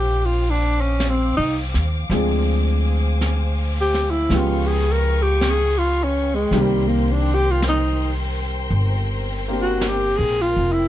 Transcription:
Already playing: A#1 F3 A#3 C4 D#4 G4 C5 F5 G5 D6
0.25 F4
0.51 D4
0.81 C#4
1.00 brush sweep, snare, hi-hat pedal
1.10 C4
1.37 C2 D#4
1.74 D#2, snare
2.10 D2 F3 G#3 C4 D4 G#4 C5 G#5, brush sweep, snare
3.21 brush sweep, snare, hi-hat pedal
3.81 G4
3.94 snare
4.11 E4
4.29 C#2 F3 G#3 B3 C#4 B4 G5 C#6, brush sweep, snare
4.34 F4 G4
4.67 G#4
4.92 A#4
5.22 G4
5.41 brush sweep, snare, hi-hat pedal
5.50 G#4
5.78 F4
6.04 C#4
6.35 G#3
6.48 C2 A#4 C5 C6
6.52 D#3 G3 A#3 C4 G4, brush sweep, snare
6.61 G3
6.88 A#3
7.12 D4
7.35 G4
7.51 F4
7.62 brush sweep, snare, hi-hat pedal
7.69 D#4
8.70 G1, brush sweep
9.48 A#3 C4 D4 G4
9.62 F#4
9.81 brush sweep, snare, hi-hat pedal
9.88 G4
10.17 A#1 G#4
10.42 F4
10.57 F1
10.73 E4

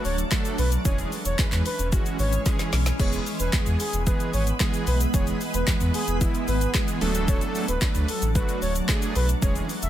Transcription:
Already playing: F#3 A3 D4
0.05 D1 C#5, open hi-hat, shaker
0.18 closed hi-hat, shaker
0.31 F#3 A3 D4 A4, kick, snare, clap, closed hi-hat, shaker
0.45 closed hi-hat, shaker
0.58 B1 B4, open hi-hat, shaker
0.72 closed hi-hat, shaker
0.85 E1 E3 G#3 C#4 G#4 C#5, kick, closed hi-hat, shaker
0.98 closed hi-hat, shaker
1.12 open hi-hat, shaker
1.25 E1 C#5, closed hi-hat, shaker
1.39 E2 E3 G#3 C#4 B4, kick, snare, clap, closed hi-hat, shaker
1.52 E2, clap, closed hi-hat, shaker
1.66 B4, open hi-hat, shaker
1.79 E1, closed hi-hat, shaker
1.92 E3 G#3 C#4 F#4, kick, closed hi-hat, shaker
2.06 closed hi-hat, shaker
2.19 G#1 C#5, open hi-hat, shaker
2.33 closed hi-hat, shaker
2.46 E3 G#3 C#4 G#4, kick, snare, closed hi-hat, shaker
2.59 snare, closed hi-hat, shaker
2.73 B1, snare, open hi-hat, shaker
2.86 snare, closed hi-hat, shaker
2.99 E1 E3 G#3 B3 G#4 C#5, kick, crash, shaker
3.13 closed hi-hat, shaker
3.26 open hi-hat, shaker
3.40 E1 B4, closed hi-hat, shaker
3.53 E2 E3 G#3 B3 G#4, kick, snare, clap, closed hi-hat, shaker
3.66 E2, closed hi-hat, shaker
3.80 G#4, open hi-hat, shaker
3.93 E1, closed hi-hat, shaker
4.06 E3 G#3 B3 G#4 B4, kick, closed hi-hat, shaker
4.20 closed hi-hat, shaker
4.33 G#1 C#5, open hi-hat, shaker
4.47 closed hi-hat, shaker
4.60 E3 G#3 B3 G#4, kick, snare, clap, closed hi-hat, shaker
4.74 closed hi-hat, shaker
4.87 B1 B4, open hi-hat, shaker
5.01 closed hi-hat, shaker
5.14 E1 E3 G#3 B3 G#4 C#5, kick, closed hi-hat, shaker
5.27 closed hi-hat, shaker
5.41 open hi-hat, shaker
5.54 E1 B4, closed hi-hat, shaker
5.67 E2 E3 G#3 B3 B4, kick, snare, clap, closed hi-hat, shaker
5.81 E2, closed hi-hat, shaker
5.94 G#4, open hi-hat, shaker
6.07 E1, closed hi-hat, shaker
6.21 E3 G#3 B3 E4, kick, closed hi-hat, shaker
6.34 closed hi-hat, shaker
6.48 G#1 B4, open hi-hat, shaker
6.61 closed hi-hat, shaker
6.74 E3 G#3 B3 G#4, kick, snare, clap, closed hi-hat, shaker
6.88 closed hi-hat, shaker
7.01 D1 F#3 A3 D4 A4, open hi-hat, shaker
7.15 closed hi-hat, shaker
7.28 C#5, kick, closed hi-hat, shaker
7.41 closed hi-hat, shaker
7.55 open hi-hat, shaker
7.68 D1 B4, closed hi-hat, shaker
7.81 D2 F#3 A3 D4 B4, kick, snare, clap, closed hi-hat, shaker
7.95 D2, closed hi-hat, shaker
8.08 A4, open hi-hat, shaker
8.22 A1, closed hi-hat, shaker
8.35 F#3 A3 D4 F#4 B4, kick, closed hi-hat, shaker
8.48 closed hi-hat, shaker
8.62 D1 C#5, open hi-hat, shaker
8.75 closed hi-hat, shaker
8.89 F#3 A3 D4 G#4, kick, snare, clap, closed hi-hat, shaker
9.02 closed hi-hat, shaker
9.15 B1 B4, open hi-hat, shaker
9.29 closed hi-hat, shaker
9.42 E1 E3 G#3 C#4 G#4 C#5, kick, closed hi-hat, shaker
9.56 closed hi-hat, shaker
9.69 open hi-hat, shaker
9.82 E1 E5, closed hi-hat, shaker

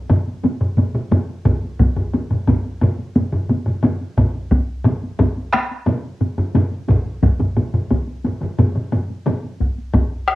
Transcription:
0.10 taiko low-mid, taiko mid, taiko high
0.28 taiko high
0.44 taiko low-mid, taiko mid, taiko high
0.61 taiko low-mid, taiko mid, taiko high
0.77 taiko low-mid, taiko mid, taiko high
0.95 taiko low-mid, taiko mid, taiko high
1.11 taiko low-mid, taiko mid, taiko high
1.29 taiko high
1.45 taiko, taiko low-mid, taiko mid, taiko high
1.64 taiko high
1.79 taiko, taiko low-mid, taiko mid, taiko high
1.96 taiko low-mid, taiko mid
2.13 taiko low-mid, taiko mid, taiko high
2.31 taiko low-mid, taiko mid, taiko high
2.47 taiko, taiko low-mid, taiko mid, taiko high
2.65 taiko high
2.81 taiko low-mid, taiko mid, taiko high
2.99 taiko high
3.16 taiko low-mid, taiko mid, taiko high
3.32 taiko low-mid, taiko mid, taiko high
3.49 taiko low-mid, taiko mid, taiko high
3.66 taiko low-mid, taiko mid, taiko high
3.83 taiko low-mid, taiko mid, taiko high
4.01 taiko high
4.17 taiko, taiko low-mid, taiko mid, taiko high
4.35 taiko high
4.51 taiko, taiko high
4.84 taiko low-mid, taiko mid, taiko high
5.04 taiko high
5.19 taiko, taiko low-mid, taiko mid, taiko high
5.38 taiko high
5.53 taiko rim, taiko high
5.71 taiko high
5.86 taiko low-mid, taiko mid, taiko high
6.05 taiko high
6.21 taiko low-mid, taiko mid, taiko high
6.38 taiko low-mid, taiko mid, taiko high
6.55 taiko low-mid, taiko mid, taiko high
6.72 taiko high
6.88 taiko, taiko low-mid, taiko mid, taiko high
7.05 taiko high
7.23 taiko, taiko low-mid, taiko mid, taiko high
7.40 taiko low-mid, taiko mid, taiko high
7.57 taiko low-mid, taiko mid, taiko high
7.74 taiko low-mid, taiko mid, taiko high
7.91 taiko, taiko low-mid, taiko mid, taiko high
8.07 taiko high
8.24 taiko low-mid, taiko mid, taiko high
8.41 taiko low-mid, taiko mid, taiko high
8.59 taiko low-mid, taiko mid, taiko high
8.76 taiko low-mid, taiko mid, taiko high
8.92 taiko low-mid, taiko mid, taiko high
9.10 taiko high
9.26 taiko low-mid, taiko mid, taiko high
9.45 taiko high
9.60 taiko, taiko high
9.78 taiko high
9.94 taiko, taiko low-mid, taiko high
10.28 taiko rim

